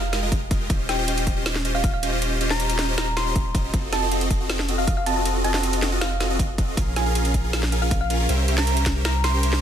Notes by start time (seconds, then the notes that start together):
Already playing: F1 F5
0.13 G#3 F4 G4 A#4 D#5, snare, closed hi-hat
0.23 G#3 F4 G4 A#4 D#5
0.32 G#3 A#4, kick, closed hi-hat
0.51 G#3 F4 G4 A#4 D#5, kick, closed hi-hat
0.61 G#3 F4 G4 A#4 D#5
0.70 D#1 C#4 F4 G4 C5 D#5, kick, closed hi-hat
0.89 C#4 F4 G4 C5 D#5 G5, snare, closed hi-hat
0.99 C#4 F4 G4 C5 D#5
1.08 C#4 F4 G4 C5 D#5, closed hi-hat
1.18 closed hi-hat
1.27 C#4 G4, kick, closed hi-hat
1.36 C#4 F4 G4 C5 D#5
1.46 C#4 F4 G4 C5, snare, closed hi-hat
1.56 snare
1.65 C#4 F4 G4 C5 D#5, closed hi-hat
1.75 C#4 F4 G4 C5 D#5 F5
1.84 F5, kick, closed hi-hat
1.94 F5
2.03 C#4 F4 G4 C5 D#5, closed hi-hat
2.12 C#4 F4 G4 C5 D#5
2.22 C#4 F4 G4 C5 D#5, closed hi-hat
2.41 C#4 F4 G4 C5 D#5, closed hi-hat
2.50 C#4 F4 G4 C5 D#5 A#5, snare
2.60 C#4 F4 G4 C5 D#5, closed hi-hat
2.70 closed hi-hat
2.79 C#4 F4 G4 C5 D#5, snare, closed hi-hat
2.88 C#4 F4 G4 C5 D#5
2.98 C#4 F4 G4 C5 D#5 A#5, snare, closed hi-hat
3.17 C#4 F4 G4 C5 D#5 C6, snare, closed hi-hat
3.27 C#4 F4 G4 C5 D#5
3.36 C#4 F4 G4 C5 D#5, kick, closed hi-hat
3.55 C#4 F4 G4 C5 D#5, kick, closed hi-hat
3.64 C#4 F4 G4 C5 D#5
3.74 F1 C4 F4 F#4 A4 D#5, kick, closed hi-hat
3.93 C4 F4 F#4 A4 D#5 A5, snare, closed hi-hat
4.02 C4 F4 F#4 A4 D#5
4.12 C4 F4 F#4 A4 D#5, closed hi-hat
4.21 closed hi-hat
4.31 kick, closed hi-hat
4.40 C4 F4 F#4 A4 D#5
4.50 C4 F4 F#4 A4 D#5, snare, closed hi-hat
4.59 snare
4.69 C4 F4 F#4 A4 D#5, closed hi-hat
4.78 C4 F4 F#4 A4 D#5 F5
4.87 C4 F4 F#4 A4 D#5 F5, kick, closed hi-hat
4.97 F5
5.06 C4 F4 F#4 A4 D#5 A5, closed hi-hat
5.16 C4 F4 F#4 A4 D#5 A5
5.25 C4 F4 F#4 A4 D#5, closed hi-hat
5.44 C4 F4 F#4 A4 D#5 A5, closed hi-hat
5.54 C4 F4 F#4 A4 D#5, snare
5.63 C4 F4 F#4 A4 D#5, closed hi-hat
5.73 closed hi-hat
5.82 C4 F4 F#4 A4 D#5, snare, closed hi-hat
5.92 C4 F4 F#4 A4 D#5
6.01 C4 F4 F#4 A4 D#5 F5, snare, closed hi-hat
6.20 C4 F4 F#4 A4 D#5, snare, closed hi-hat
6.30 C4 F4 F#4 A4 D#5
6.39 F4, kick, closed hi-hat
6.58 C4 F4 F#4 A4 D#5, kick, closed hi-hat
6.68 C4 F4 F#4 A4 D#5
6.77 A#1 C#4 F4 G#4 A#4 F5, kick, closed hi-hat
6.96 C#4 F4 G#4 A#4 F5 G#5, snare, closed hi-hat
7.06 C#4 F4 G#4 A#4 F5
7.15 C#4 F4 G#4 A#4 F5, closed hi-hat
7.25 closed hi-hat
7.34 C#4 F4 A#4 F5, kick, closed hi-hat
7.44 C#4 F4 G#4 A#4 F5
7.53 C#4 F4 G#4 A#4 F5, snare, closed hi-hat
7.63 snare
7.72 C#4 F4 G#4 A#4 F5, closed hi-hat
7.82 C#4 F4 G#4 A#4 F5
7.91 C#4 F4 G#4 A#4 F5, kick, closed hi-hat
8.01 F5
8.10 C#4 F4 G#4 A#4 F5, closed hi-hat
8.20 C#4 F4 G#4 A#4 F5
8.29 C2 C#4 G4 A#4 C5 E5, closed hi-hat
8.48 C#4 G4 A#4 C5 E5, closed hi-hat
8.58 C#4 G4 A#4 C5 E5 A#5, snare
8.67 C#4 G4 A#4 C5 E5, closed hi-hat
8.77 closed hi-hat
8.86 C#4 A#4 C5 E5, kick, snare, closed hi-hat
8.96 C#4 G4 A#4 C5 E5
9.05 C#4 G4 A#4 C5 E5 A#5, snare, closed hi-hat
9.24 C#4 G4 A#4 C5 E5 C6, snare, closed hi-hat
9.34 C#4 G4 A#4 C5 G5
9.43 C#4 G4 A#4 C5 E5, closed hi-hat
9.53 snare